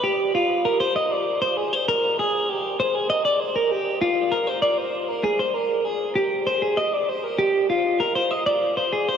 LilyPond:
\new Staff \with { instrumentName = "Clean electric guitar" } { \time 6/8 \key f \dorian \tempo 4. = 65 g'8 f'8 bes'16 c''16 ees''16 d''8 c''16 aes'16 c''16 | bes'8 aes'8 g'8 c''16 aes'16 ees''16 d''16 c''16 bes'16 | g'8 f'8 bes'16 c''16 d''16 c''8 bes'16 aes'16 c''16 | bes'8 aes'8 g'8 c''16 aes'16 ees''16 d''16 c''16 bes'16 |
g'8 f'8 bes'16 c''16 ees''16 d''8 c''16 aes'16 c''16 | }